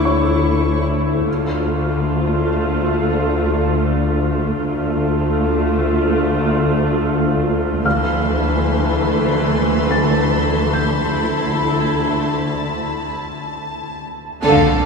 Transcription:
0, 0, Header, 1, 10, 480
1, 0, Start_track
1, 0, Tempo, 821918
1, 743, Time_signature, 4, 2, 24, 8
1, 8676, End_track
2, 0, Start_track
2, 0, Title_t, "Felt piano"
2, 0, Program_c, 0, 0
2, 0, Control_c, 0, 64, 127
2, 29, Note_on_c, 0, 73, 27
2, 30, Note_on_c, 0, 85, 39
2, 754, Control_c, 0, 64, 0
2, 841, Control_c, 0, 64, 127
2, 1443, Note_off_c, 0, 73, 0
2, 1444, Note_off_c, 0, 85, 0
2, 4588, Note_on_c, 0, 89, 42
2, 4589, Note_on_c, 0, 77, 34
2, 4596, Control_c, 0, 64, 0
2, 4681, Control_c, 0, 64, 127
2, 5786, Note_on_c, 0, 93, 47
2, 6002, Note_off_c, 0, 89, 0
2, 6003, Note_off_c, 0, 77, 0
2, 6268, Note_on_c, 0, 91, 33
2, 7202, Note_off_c, 0, 93, 0
2, 7442, Note_off_c, 0, 91, 0
2, 8433, Control_c, 0, 64, 0
2, 8536, Control_c, 0, 64, 127
2, 8676, End_track
3, 0, Start_track
3, 0, Title_t, "Violin section"
3, 0, Program_c, 1, 48
3, 0, Note_on_c, 1, 85, 27
3, 486, Note_off_c, 1, 85, 0
3, 4583, Note_on_c, 1, 81, 41
3, 4585, Note_on_c, 1, 84, 40
3, 4586, Note_on_c, 1, 83, 40
3, 7201, Note_off_c, 1, 84, 0
3, 7682, Note_off_c, 1, 83, 0
3, 8160, Note_off_c, 1, 81, 0
3, 8428, Note_on_c, 1, 81, 29
3, 8430, Note_on_c, 1, 86, 29
3, 8676, Note_off_c, 1, 81, 0
3, 8676, Note_off_c, 1, 86, 0
3, 8676, End_track
4, 0, Start_track
4, 0, Title_t, "Violin section"
4, 0, Program_c, 2, 48
4, 8421, Note_on_c, 2, 77, 51
4, 8676, Note_off_c, 2, 77, 0
4, 8676, End_track
5, 0, Start_track
5, 0, Title_t, "Violin section"
5, 0, Program_c, 3, 48
5, 8424, Note_on_c, 3, 69, 43
5, 8676, Note_off_c, 3, 69, 0
5, 8676, End_track
6, 0, Start_track
6, 0, Title_t, "Viola section"
6, 0, Program_c, 4, 48
6, 0, Note_on_c, 4, 57, 43
6, 0, Note_on_c, 4, 64, 45
6, 721, Note_off_c, 4, 57, 0
6, 722, Note_off_c, 4, 64, 0
6, 747, Note_on_c, 4, 65, 52
6, 751, Note_on_c, 4, 57, 55
6, 2642, Note_off_c, 4, 65, 0
6, 2644, Note_off_c, 4, 57, 0
6, 2667, Note_on_c, 4, 57, 60
6, 2668, Note_on_c, 4, 65, 53
6, 4562, Note_off_c, 4, 57, 0
6, 4562, Note_off_c, 4, 65, 0
6, 4585, Note_on_c, 4, 52, 59
6, 4586, Note_on_c, 4, 57, 58
6, 6481, Note_off_c, 4, 52, 0
6, 6481, Note_off_c, 4, 57, 0
6, 6505, Note_on_c, 4, 57, 44
6, 6507, Note_on_c, 4, 64, 46
6, 7441, Note_off_c, 4, 57, 0
6, 7442, Note_off_c, 4, 64, 0
6, 8426, Note_on_c, 4, 57, 50
6, 8676, Note_off_c, 4, 57, 0
6, 8676, End_track
7, 0, Start_track
7, 0, Title_t, "Cello section"
7, 0, Program_c, 5, 48
7, 8420, Note_on_c, 5, 50, 67
7, 8565, Note_off_c, 5, 50, 0
7, 8676, End_track
8, 0, Start_track
8, 0, Title_t, "Cello section"
8, 0, Program_c, 6, 48
8, 0, Note_on_c, 6, 38, 43
8, 723, Note_off_c, 6, 38, 0
8, 748, Note_on_c, 6, 38, 54
8, 2643, Note_off_c, 6, 38, 0
8, 2664, Note_on_c, 6, 38, 58
8, 4560, Note_off_c, 6, 38, 0
8, 4587, Note_on_c, 6, 38, 56
8, 6482, Note_off_c, 6, 38, 0
8, 6503, Note_on_c, 6, 38, 43
8, 7444, Note_off_c, 6, 38, 0
8, 8422, Note_on_c, 6, 50, 51
8, 8676, Note_off_c, 6, 50, 0
8, 8676, End_track
9, 0, Start_track
9, 0, Title_t, "Double bass section"
9, 0, Program_c, 7, 48
9, 0, Note_on_c, 7, 38, 42
9, 720, Note_off_c, 7, 38, 0
9, 749, Note_on_c, 7, 38, 48
9, 2643, Note_off_c, 7, 38, 0
9, 2666, Note_on_c, 7, 38, 56
9, 4562, Note_off_c, 7, 38, 0
9, 4589, Note_on_c, 7, 38, 52
9, 6483, Note_off_c, 7, 38, 0
9, 6504, Note_on_c, 7, 38, 42
9, 7445, Note_off_c, 7, 38, 0
9, 8427, Note_on_c, 7, 38, 52
9, 8676, Note_off_c, 7, 38, 0
9, 8676, End_track
10, 0, Start_track
10, 0, Title_t, "Impact"
10, 0, Program_c, 8, 103
10, 8425, Note_on_c, 8, 60, 44
10, 8676, Note_off_c, 8, 60, 0
10, 8676, End_track
0, 0, End_of_file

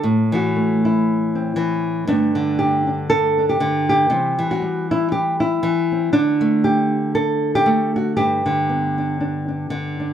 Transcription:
0, 0, Header, 1, 2, 480
1, 0, Start_track
1, 0, Key_signature, 1, "major"
1, 0, Tempo, 508044
1, 38, Time_signature, 4, 2, 24, 8
1, 9574, End_track
2, 0, Start_track
2, 0, Title_t, "Nylon-string guitar"
2, 0, Program_c, 0, 24
2, 0, Note_on_c, 0, 69, 89
2, 32, Note_on_c, 0, 45, 61
2, 304, Note_on_c, 0, 52, 70
2, 316, Note_off_c, 0, 69, 0
2, 329, Note_on_c, 0, 66, 78
2, 529, Note_on_c, 0, 57, 46
2, 798, Note_off_c, 0, 66, 0
2, 804, Note_on_c, 0, 64, 77
2, 1278, Note_on_c, 0, 60, 44
2, 1463, Note_off_c, 0, 52, 0
2, 1474, Note_on_c, 0, 52, 63
2, 1931, Note_off_c, 0, 52, 0
2, 1939, Note_off_c, 0, 57, 0
2, 1939, Note_off_c, 0, 60, 0
2, 1956, Note_off_c, 0, 45, 0
2, 1960, Note_on_c, 0, 43, 72
2, 1968, Note_off_c, 0, 64, 0
2, 1969, Note_on_c, 0, 50, 41
2, 1969, Note_on_c, 0, 62, 94
2, 1975, Note_on_c, 0, 57, 44
2, 2210, Note_off_c, 0, 50, 0
2, 2222, Note_on_c, 0, 50, 62
2, 2445, Note_on_c, 0, 67, 87
2, 2700, Note_off_c, 0, 62, 0
2, 2712, Note_on_c, 0, 62, 42
2, 2922, Note_off_c, 0, 67, 0
2, 2925, Note_on_c, 0, 69, 109
2, 3185, Note_off_c, 0, 62, 0
2, 3196, Note_on_c, 0, 62, 45
2, 3296, Note_off_c, 0, 69, 0
2, 3301, Note_on_c, 0, 67, 90
2, 3393, Note_off_c, 0, 50, 0
2, 3405, Note_on_c, 0, 50, 74
2, 3667, Note_off_c, 0, 67, 0
2, 3679, Note_on_c, 0, 67, 84
2, 3855, Note_off_c, 0, 43, 0
2, 3859, Note_off_c, 0, 62, 0
2, 3862, Note_off_c, 0, 57, 0
2, 3872, Note_on_c, 0, 48, 65
2, 3874, Note_off_c, 0, 50, 0
2, 3878, Note_on_c, 0, 52, 44
2, 3882, Note_on_c, 0, 55, 48
2, 3893, Note_on_c, 0, 60, 45
2, 4140, Note_off_c, 0, 52, 0
2, 4143, Note_on_c, 0, 52, 60
2, 4144, Note_off_c, 0, 48, 0
2, 4257, Note_off_c, 0, 67, 0
2, 4261, Note_on_c, 0, 66, 93
2, 4353, Note_off_c, 0, 55, 0
2, 4364, Note_on_c, 0, 55, 51
2, 4631, Note_off_c, 0, 66, 0
2, 4640, Note_on_c, 0, 64, 85
2, 4833, Note_off_c, 0, 64, 0
2, 4836, Note_on_c, 0, 67, 92
2, 5099, Note_off_c, 0, 67, 0
2, 5103, Note_on_c, 0, 64, 75
2, 5306, Note_off_c, 0, 52, 0
2, 5317, Note_on_c, 0, 52, 74
2, 5581, Note_off_c, 0, 60, 0
2, 5592, Note_on_c, 0, 60, 43
2, 5773, Note_off_c, 0, 52, 0
2, 5777, Note_off_c, 0, 60, 0
2, 5789, Note_on_c, 0, 62, 106
2, 5796, Note_on_c, 0, 50, 62
2, 5798, Note_off_c, 0, 64, 0
2, 5802, Note_off_c, 0, 55, 0
2, 6054, Note_on_c, 0, 57, 68
2, 6275, Note_on_c, 0, 67, 97
2, 6750, Note_off_c, 0, 67, 0
2, 6754, Note_off_c, 0, 62, 0
2, 6754, Note_on_c, 0, 69, 104
2, 7131, Note_off_c, 0, 69, 0
2, 7135, Note_on_c, 0, 67, 99
2, 7225, Note_off_c, 0, 57, 0
2, 7237, Note_on_c, 0, 57, 70
2, 7508, Note_off_c, 0, 67, 0
2, 7520, Note_on_c, 0, 66, 85
2, 7693, Note_off_c, 0, 57, 0
2, 7712, Note_off_c, 0, 66, 0
2, 7716, Note_on_c, 0, 67, 97
2, 7720, Note_on_c, 0, 43, 64
2, 7979, Note_off_c, 0, 50, 0
2, 7990, Note_on_c, 0, 50, 59
2, 8213, Note_on_c, 0, 59, 48
2, 8484, Note_on_c, 0, 62, 45
2, 8686, Note_off_c, 0, 62, 0
2, 8697, Note_on_c, 0, 62, 51
2, 8950, Note_off_c, 0, 62, 0
2, 8961, Note_on_c, 0, 62, 41
2, 9155, Note_off_c, 0, 50, 0
2, 9167, Note_on_c, 0, 50, 66
2, 9434, Note_off_c, 0, 62, 0
2, 9445, Note_on_c, 0, 62, 46
2, 9574, Note_off_c, 0, 43, 0
2, 9574, Note_off_c, 0, 50, 0
2, 9574, Note_off_c, 0, 59, 0
2, 9574, Note_off_c, 0, 62, 0
2, 9574, Note_off_c, 0, 67, 0
2, 9574, End_track
0, 0, End_of_file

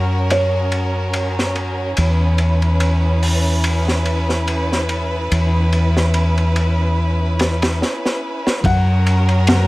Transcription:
0, 0, Header, 1, 5, 480
1, 0, Start_track
1, 0, Tempo, 833333
1, 1136, Time_signature, 4, 2, 24, 8
1, 5572, End_track
2, 0, Start_track
2, 0, Title_t, "Felt piano"
2, 0, Program_c, 0, 0
2, 0, Note_on_c, 0, 70, 83
2, 181, Note_on_c, 0, 73, 95
2, 210, Note_off_c, 0, 70, 0
2, 876, Note_off_c, 0, 73, 0
2, 4986, Note_on_c, 0, 78, 110
2, 5572, Note_off_c, 0, 78, 0
2, 5572, End_track
3, 0, Start_track
3, 0, Title_t, "Violin section"
3, 0, Program_c, 1, 48
3, 0, Note_on_c, 1, 61, 61
3, 0, Note_on_c, 1, 66, 60
3, 0, Note_on_c, 1, 70, 75
3, 1115, Note_off_c, 1, 66, 0
3, 1115, Note_off_c, 1, 70, 0
3, 1137, Note_on_c, 1, 71, 76
3, 1138, Note_on_c, 1, 64, 64
3, 4954, Note_off_c, 1, 64, 0
3, 4954, Note_off_c, 1, 71, 0
3, 4955, Note_off_c, 1, 61, 0
3, 4980, Note_on_c, 1, 61, 78
3, 4980, Note_on_c, 1, 70, 88
3, 4981, Note_on_c, 1, 66, 70
3, 5572, Note_off_c, 1, 61, 0
3, 5572, Note_off_c, 1, 66, 0
3, 5572, Note_off_c, 1, 70, 0
3, 5572, End_track
4, 0, Start_track
4, 0, Title_t, "Fingered electric bass"
4, 0, Program_c, 2, 33
4, 0, Note_on_c, 2, 42, 66
4, 1118, Note_off_c, 2, 42, 0
4, 1141, Note_on_c, 2, 40, 75
4, 3037, Note_off_c, 2, 40, 0
4, 3063, Note_on_c, 2, 40, 70
4, 4500, Note_off_c, 2, 40, 0
4, 4979, Note_on_c, 2, 42, 84
4, 5572, Note_off_c, 2, 42, 0
4, 5572, End_track
5, 0, Start_track
5, 0, Title_t, "Drums"
5, 175, Note_on_c, 9, 51, 73
5, 233, Note_off_c, 9, 51, 0
5, 413, Note_on_c, 9, 51, 53
5, 471, Note_off_c, 9, 51, 0
5, 654, Note_on_c, 9, 51, 76
5, 711, Note_off_c, 9, 51, 0
5, 800, Note_on_c, 9, 38, 46
5, 857, Note_off_c, 9, 38, 0
5, 896, Note_on_c, 9, 51, 49
5, 953, Note_off_c, 9, 51, 0
5, 1133, Note_on_c, 9, 51, 81
5, 1191, Note_off_c, 9, 51, 0
5, 1372, Note_on_c, 9, 51, 52
5, 1430, Note_off_c, 9, 51, 0
5, 1509, Note_on_c, 9, 51, 36
5, 1567, Note_off_c, 9, 51, 0
5, 1614, Note_on_c, 9, 51, 67
5, 1672, Note_off_c, 9, 51, 0
5, 1859, Note_on_c, 9, 46, 75
5, 1916, Note_off_c, 9, 46, 0
5, 2095, Note_on_c, 9, 51, 84
5, 2153, Note_off_c, 9, 51, 0
5, 2237, Note_on_c, 9, 38, 48
5, 2294, Note_off_c, 9, 38, 0
5, 2335, Note_on_c, 9, 51, 54
5, 2393, Note_off_c, 9, 51, 0
5, 2473, Note_on_c, 9, 38, 34
5, 2531, Note_off_c, 9, 38, 0
5, 2578, Note_on_c, 9, 51, 66
5, 2635, Note_off_c, 9, 51, 0
5, 2721, Note_on_c, 9, 38, 37
5, 2778, Note_off_c, 9, 38, 0
5, 2816, Note_on_c, 9, 51, 57
5, 2874, Note_off_c, 9, 51, 0
5, 3062, Note_on_c, 9, 51, 86
5, 3120, Note_off_c, 9, 51, 0
5, 3297, Note_on_c, 9, 51, 54
5, 3355, Note_off_c, 9, 51, 0
5, 3437, Note_on_c, 9, 38, 51
5, 3494, Note_off_c, 9, 38, 0
5, 3536, Note_on_c, 9, 51, 71
5, 3593, Note_off_c, 9, 51, 0
5, 3672, Note_on_c, 9, 51, 41
5, 3730, Note_off_c, 9, 51, 0
5, 3778, Note_on_c, 9, 51, 64
5, 3835, Note_off_c, 9, 51, 0
5, 4259, Note_on_c, 9, 51, 62
5, 4266, Note_on_c, 9, 38, 91
5, 4316, Note_off_c, 9, 51, 0
5, 4324, Note_off_c, 9, 38, 0
5, 4391, Note_on_c, 9, 51, 61
5, 4395, Note_on_c, 9, 38, 90
5, 4448, Note_off_c, 9, 51, 0
5, 4452, Note_off_c, 9, 38, 0
5, 4506, Note_on_c, 9, 38, 56
5, 4563, Note_off_c, 9, 38, 0
5, 4640, Note_on_c, 9, 38, 52
5, 4697, Note_off_c, 9, 38, 0
5, 4877, Note_on_c, 9, 38, 69
5, 4935, Note_off_c, 9, 38, 0
5, 4976, Note_on_c, 9, 36, 94
5, 4980, Note_on_c, 9, 51, 85
5, 5034, Note_off_c, 9, 36, 0
5, 5038, Note_off_c, 9, 51, 0
5, 5221, Note_on_c, 9, 51, 62
5, 5279, Note_off_c, 9, 51, 0
5, 5349, Note_on_c, 9, 51, 45
5, 5407, Note_off_c, 9, 51, 0
5, 5456, Note_on_c, 9, 51, 86
5, 5463, Note_on_c, 9, 38, 112
5, 5513, Note_off_c, 9, 51, 0
5, 5521, Note_off_c, 9, 38, 0
5, 5572, End_track
0, 0, End_of_file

